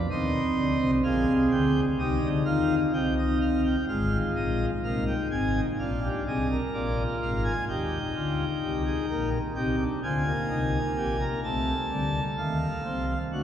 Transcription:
0.10 D#2 D#3 C4 C5 D#5
0.56 D2 D3
0.80 C2 C3
1.04 A#1 A#2 G#4 F5
1.27 C2 C3
1.51 D2 D3 G5
1.99 C2 C3 D#4 G4 D#5
2.22 D2 D3
2.45 D#2 D#3 F4 F5
2.94 C2 C3 D#4 G5
3.18 D#5
3.41 F5
3.64 G5
3.88 G#1 G#2 G#3 F4 F5
4.36 A#1 A#2 D#5
4.84 C2 C3 A#3 D#4 F5
5.08 G5
5.31 G#1 G#2 C4 G#5
5.79 A#1 A#2 D4 F4 F5
6.03 G4
6.27 C2 C3 G#4 D#5
6.51 A#4
6.73 A#1 A#2 F4 D5
7.22 G#1 G#2 F5
7.44 G#5
7.69 D#2 D#3 D#4 G4 G5
8.16 D2 D3 F4
8.63 C2 C3 G4
8.86 G#4
9.09 A#1 A#2 A#4
9.55 C2 C3 D#4 G4 G5
9.79 D4
10.03 D2 D3 C4 F4 G#5
10.26 A#3
10.49 C2 C3 D#4
10.96 A#1 A#2 G4
11.20 A#4
11.44 C2 C3 A3 A4 A5
11.91 D2 D3 G3
12.38 D#2 D#3 A3 F5
12.61 A#3
12.85 C2 C3 C4
13.32 D2 D3 A3 F#4 F#5

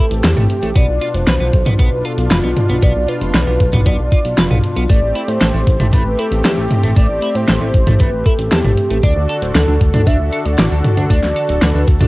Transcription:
Already playing: A3 C4 G4
0.00 A4
0.11 A1, closed hi-hat
0.24 E2 G4 A4, snare, closed hi-hat
0.37 A1 A3, mid tom
0.50 closed hi-hat
0.62 A1 A3, closed hi-hat
0.75 B1 B2 B3 D4 F4 D5, kick, closed hi-hat
0.88 B1
1.01 F4, closed hi-hat
1.14 F1 C5, closed hi-hat
1.27 B1 B4, snare, closed hi-hat
1.40 B1 B3
1.53 B1, kick, closed hi-hat
1.66 B1 B3, closed hi-hat, mid tom
1.79 B1 B3 B4, kick, closed hi-hat
1.92 B1
2.05 F4 A4, closed hi-hat
2.18 B1, closed hi-hat
2.31 F1 F4 B4, snare, closed hi-hat
2.44 B1 B3
2.57 closed hi-hat, mid tom
2.69 B1 B3, closed hi-hat
2.82 B1 B3 D5, kick, closed hi-hat
2.96 B1
3.08 F4 B4, closed hi-hat
3.21 F1, closed hi-hat
3.34 B1 B4, snare, closed hi-hat
3.47 B1 B3
3.60 B1, kick, closed hi-hat
3.73 B1 B3, kick, closed hi-hat, mid tom
3.86 B1 B3 D5, kick, closed hi-hat
3.99 B1
4.12 F4, kick, closed hi-hat
4.25 B1, closed hi-hat
4.38 F1 F4 B4, snare, closed hi-hat
4.51 B1 B3, mid tom
4.64 closed hi-hat
4.76 B1 B3, closed hi-hat
4.89 A1 A3 C4 G4 D5, kick, closed hi-hat
5.02 A1
5.15 E4, closed hi-hat
5.28 A2 C5, closed hi-hat
5.41 A1 A4, snare, closed hi-hat
5.54 A1 A3
5.67 A1, kick, closed hi-hat
5.80 A1 A3, closed hi-hat, mid tom
5.93 A1 A3 B4, kick, closed hi-hat
6.05 A1
6.19 E4 A4, closed hi-hat
6.31 A1, closed hi-hat
6.44 E2 G4 A4, snare, closed hi-hat
6.57 A1 A3
6.71 closed hi-hat, mid tom
6.83 A1 A3, closed hi-hat
6.96 A1 A3 D5, kick, closed hi-hat
7.09 A1
7.22 E4, closed hi-hat
7.35 A2 C5, closed hi-hat
7.48 A1 A4, snare, closed hi-hat
7.61 A1 A3
7.74 A1, kick, closed hi-hat
7.87 A1 A3, kick, closed hi-hat, mid tom
8.00 A1 A3 B4, kick, closed hi-hat
8.13 A1
8.26 E4 A4, kick, closed hi-hat
8.39 A1, closed hi-hat
8.52 E2 G4 A4, snare, closed hi-hat
8.64 A1 A3, mid tom
8.77 closed hi-hat
8.90 A1 A3, closed hi-hat
9.03 D2 D3 D4 F#4 A4 D5, kick, closed hi-hat
9.16 D2
9.29 A4, closed hi-hat
9.42 D1 C5, closed hi-hat
9.55 D2 A4 D5, snare, closed hi-hat
9.68 D2 D4
9.81 D2, kick, closed hi-hat
9.94 D2 D4, closed hi-hat, mid tom
10.07 D2 D4 E5, kick, closed hi-hat
10.20 D2
10.33 A4, closed hi-hat
10.45 D2 D5, closed hi-hat
10.58 A1 F#4 D5, snare, closed hi-hat
10.71 D2 D4
10.85 closed hi-hat, mid tom
10.97 D2 D4, closed hi-hat
11.10 D2 D4 D5, kick, closed hi-hat
11.23 D2, snare
11.36 A4, closed hi-hat
11.49 D1, closed hi-hat
11.62 D2 B4 D5, snare, closed hi-hat
11.75 D2 D4
11.87 D2 A4, kick, closed hi-hat
12.01 D2 D4, kick, closed hi-hat, mid tom

